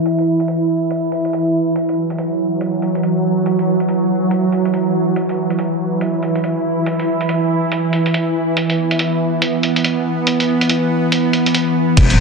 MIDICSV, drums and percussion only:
0, 0, Header, 1, 2, 480
1, 0, Start_track
1, 0, Tempo, 425532
1, 65, Time_signature, 4, 2, 24, 8
1, 13763, End_track
2, 0, Start_track
2, 0, Title_t, "Drums"
2, 63, Note_on_c, 9, 42, 70
2, 176, Note_off_c, 9, 42, 0
2, 209, Note_on_c, 9, 42, 47
2, 322, Note_off_c, 9, 42, 0
2, 449, Note_on_c, 9, 42, 49
2, 542, Note_off_c, 9, 42, 0
2, 542, Note_on_c, 9, 42, 69
2, 655, Note_off_c, 9, 42, 0
2, 1022, Note_on_c, 9, 42, 73
2, 1135, Note_off_c, 9, 42, 0
2, 1263, Note_on_c, 9, 42, 47
2, 1375, Note_off_c, 9, 42, 0
2, 1409, Note_on_c, 9, 42, 48
2, 1502, Note_off_c, 9, 42, 0
2, 1502, Note_on_c, 9, 42, 78
2, 1615, Note_off_c, 9, 42, 0
2, 1982, Note_on_c, 9, 42, 69
2, 2095, Note_off_c, 9, 42, 0
2, 2131, Note_on_c, 9, 42, 46
2, 2244, Note_off_c, 9, 42, 0
2, 2371, Note_on_c, 9, 42, 47
2, 2464, Note_off_c, 9, 42, 0
2, 2464, Note_on_c, 9, 42, 71
2, 2577, Note_off_c, 9, 42, 0
2, 2944, Note_on_c, 9, 42, 72
2, 3056, Note_off_c, 9, 42, 0
2, 3183, Note_on_c, 9, 42, 45
2, 3296, Note_off_c, 9, 42, 0
2, 3330, Note_on_c, 9, 42, 47
2, 3422, Note_off_c, 9, 42, 0
2, 3422, Note_on_c, 9, 42, 76
2, 3535, Note_off_c, 9, 42, 0
2, 3903, Note_on_c, 9, 42, 66
2, 4015, Note_off_c, 9, 42, 0
2, 4050, Note_on_c, 9, 42, 45
2, 4163, Note_off_c, 9, 42, 0
2, 4289, Note_on_c, 9, 42, 43
2, 4382, Note_off_c, 9, 42, 0
2, 4382, Note_on_c, 9, 42, 67
2, 4495, Note_off_c, 9, 42, 0
2, 4862, Note_on_c, 9, 42, 69
2, 4975, Note_off_c, 9, 42, 0
2, 5103, Note_on_c, 9, 42, 43
2, 5215, Note_off_c, 9, 42, 0
2, 5250, Note_on_c, 9, 42, 47
2, 5343, Note_off_c, 9, 42, 0
2, 5343, Note_on_c, 9, 42, 72
2, 5456, Note_off_c, 9, 42, 0
2, 5823, Note_on_c, 9, 42, 68
2, 5936, Note_off_c, 9, 42, 0
2, 5969, Note_on_c, 9, 42, 46
2, 6082, Note_off_c, 9, 42, 0
2, 6209, Note_on_c, 9, 42, 44
2, 6301, Note_off_c, 9, 42, 0
2, 6301, Note_on_c, 9, 42, 69
2, 6413, Note_off_c, 9, 42, 0
2, 6781, Note_on_c, 9, 42, 72
2, 6894, Note_off_c, 9, 42, 0
2, 7023, Note_on_c, 9, 42, 46
2, 7136, Note_off_c, 9, 42, 0
2, 7168, Note_on_c, 9, 42, 44
2, 7262, Note_off_c, 9, 42, 0
2, 7262, Note_on_c, 9, 42, 71
2, 7375, Note_off_c, 9, 42, 0
2, 7742, Note_on_c, 9, 42, 72
2, 7855, Note_off_c, 9, 42, 0
2, 7890, Note_on_c, 9, 42, 47
2, 8003, Note_off_c, 9, 42, 0
2, 8129, Note_on_c, 9, 42, 48
2, 8223, Note_off_c, 9, 42, 0
2, 8223, Note_on_c, 9, 42, 73
2, 8336, Note_off_c, 9, 42, 0
2, 8704, Note_on_c, 9, 42, 72
2, 8817, Note_off_c, 9, 42, 0
2, 8944, Note_on_c, 9, 42, 47
2, 9057, Note_off_c, 9, 42, 0
2, 9090, Note_on_c, 9, 42, 49
2, 9185, Note_off_c, 9, 42, 0
2, 9185, Note_on_c, 9, 42, 78
2, 9297, Note_off_c, 9, 42, 0
2, 9664, Note_on_c, 9, 42, 75
2, 9777, Note_off_c, 9, 42, 0
2, 9810, Note_on_c, 9, 42, 49
2, 9923, Note_off_c, 9, 42, 0
2, 10051, Note_on_c, 9, 42, 50
2, 10143, Note_off_c, 9, 42, 0
2, 10143, Note_on_c, 9, 42, 76
2, 10256, Note_off_c, 9, 42, 0
2, 10624, Note_on_c, 9, 42, 74
2, 10737, Note_off_c, 9, 42, 0
2, 10865, Note_on_c, 9, 42, 48
2, 10978, Note_off_c, 9, 42, 0
2, 11013, Note_on_c, 9, 42, 48
2, 11105, Note_off_c, 9, 42, 0
2, 11105, Note_on_c, 9, 42, 82
2, 11218, Note_off_c, 9, 42, 0
2, 11583, Note_on_c, 9, 42, 74
2, 11696, Note_off_c, 9, 42, 0
2, 11732, Note_on_c, 9, 42, 51
2, 11845, Note_off_c, 9, 42, 0
2, 11972, Note_on_c, 9, 42, 50
2, 12064, Note_off_c, 9, 42, 0
2, 12064, Note_on_c, 9, 42, 75
2, 12177, Note_off_c, 9, 42, 0
2, 12544, Note_on_c, 9, 42, 78
2, 12657, Note_off_c, 9, 42, 0
2, 12784, Note_on_c, 9, 42, 50
2, 12897, Note_off_c, 9, 42, 0
2, 12931, Note_on_c, 9, 42, 53
2, 13023, Note_off_c, 9, 42, 0
2, 13023, Note_on_c, 9, 42, 80
2, 13136, Note_off_c, 9, 42, 0
2, 13504, Note_on_c, 9, 36, 117
2, 13504, Note_on_c, 9, 42, 81
2, 13504, Note_on_c, 9, 49, 101
2, 13617, Note_off_c, 9, 36, 0
2, 13617, Note_off_c, 9, 42, 0
2, 13617, Note_off_c, 9, 49, 0
2, 13651, Note_on_c, 9, 42, 52
2, 13763, Note_off_c, 9, 42, 0
2, 13763, End_track
0, 0, End_of_file